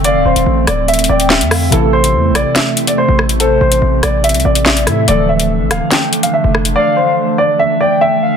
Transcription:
<<
  \new Staff \with { instrumentName = "Soft synth lead" } { \time 4/4 \key d \dorian \tempo 4 = 143 f''4 r4. g''4 f''8 | r1 | c''4 r2 d''8 e''8 | r1 |
f''4 r4. g''4 f''8 | }
  \new Staff \with { instrumentName = "Grand piano" } { \time 4/4 \key d \dorian d''8 c''4 d''8 e''8 d''8 e''4 | a'8 c''4 d''8 e''8. d''16 c''8 r8 | a'8 c''4 d''8 e''8 d''8 e''4 | d''8 e''4 f''8 g''8. f''16 e''8 r8 |
d''8 c''4 d''8 e''8 d''8 e''4 | }
  \new Staff \with { instrumentName = "Ambient pad" } { \time 4/4 \key d \dorian << { c'1~ | c'1~ | c'1 | d'1~ |
d'1 | } \\ { <d a>1 | <c a>1~ | <c a>1 | <d a>1~ |
<d a>1 | } >> }
  \new Staff \with { instrumentName = "Synth keys" } { \clef bass \time 4/4 \key d \dorian <d e f a a'>1 | <c e a e' a'>1~ | <c e a e' a'>2.~ <c e a e' a'>8 <c e a e' a'>8 | <d e f a a'>1~ |
<d e f a a'>1 | }
  \new Staff \with { instrumentName = "808-style bass" } { \clef bass \time 4/4 \key d \dorian f,,16 c,,16 d,,16 d,,16 a,,8 d,,4 d,,8. f,8. | a,,4 e,16. a,,16. r4. a,,8.~ | a,,8 a,,8 a,,8 a,,8. c,16 a,,4 a,8 | d,,4~ d,,16 a,,16 d,,16 r4. f,,8. |
r1 | }
  \new DrumStaff \with { instrumentName = "Drums" } \drummode { \time 4/4 hh8. hh16 r8 <hh ss>8 hh32 hh32 hh32 hh16. hh16 <hc sn>16 hh16 <hho ss>8 | hh8. hh16 r8 <hh ss>8 <hc hh sn>8 hh16 hh16 r8 ss16 hh16 | hh8. hh16 r8 <hh ss>8 hh32 hh32 hh32 hh16. hh16 <hc sn>16 hh16 <hh ss>8 | hh8. hh16 r8 <hh ss>8 <hc hh sn>8 hh16 hh16 r8 ss16 hh16 |
r4 r4 r4 r4 | }
>>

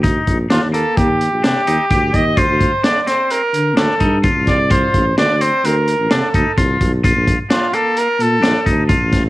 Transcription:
<<
  \new Staff \with { instrumentName = "Trumpet" } { \time 5/4 \key d \phrygian \tempo 4 = 129 r4 f'8 a'8 g'4 g'4. ees''8 | c''4 d''16. d''32 c''8 bes'4 a'4 r8 d''8 | c''4 d''8 c''8 bes'4 a'4 r4 | r4 f'8 a'8 bes'8 a'4 r4. | }
  \new Staff \with { instrumentName = "Clean electric guitar" } { \time 5/4 \key d \phrygian ees'4 d'8 bes4 r8 d'8 ees'8 g'4 | f'4 d'8 c'4 r8 d'8 ees'8 f'4 | f'4 d'8 c'4 r8 d'8 ees'8 f'4 | f'4 d'8 bes4 r8 d'8 ees'8 f'4 | }
  \new Staff \with { instrumentName = "Tuba" } { \clef bass \time 5/4 \key d \phrygian d,8 bes,,8 ees,16 ees,8 r16 ees,8. bes,,16 c16 r16 ees,16 r16 d,8 ees,8 | d,16 d,8 r4. r16 d8 d,16 r16 g,8. c,8.~ | c,8 a,,8 d,16 d,8 r16 d,8. a,,16 c16 r16 d,16 r16 c,8 ces,8 | bes,,16 bes,,8 r4. r16 bes,8 bes,,16 r16 d,8. a,,8. | }
  \new DrumStaff \with { instrumentName = "Drums" } \drummode { \time 5/4 <hh bd>8 <hh bd>8 <hh sn>8 hh8 <hh bd>8 hh8 <hh sn>8 hh8 <hh bd>8 <hh bd>8 | <hh bd>8 <hh bd>8 <hh sn>8 <hh sn>8 hh8 hh8 <hh sn>8 <hh bd>8 <hh bd>8 <hh bd sn>8 | <hh bd>8 <hh bd>8 <hh sn>8 hh8 hh8 hh8 <hh sn>8 <hh bd>8 <hh bd>8 <hh bd>8 | <hh bd>8 <hh bd>8 <hh sn>8 hh8 hh8 hh8 <hh sn>8 <hh bd>8 <hh bd>8 <hh bd sn>8 | }
>>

